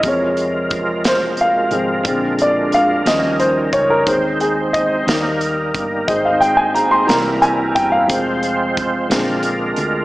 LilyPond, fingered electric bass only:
\new Staff \with { instrumentName = "Fingered electric bass" } { \clef bass \time 6/8 \key aes \major \tempo 4. = 60 f,2~ f,8 aes,,8 | bes,,4. ees,4 des,8 | ees,4. ees,4 g,,8 | aes,,4. c,4 g,,8 |
f,,4. bes,,4 d,8 | }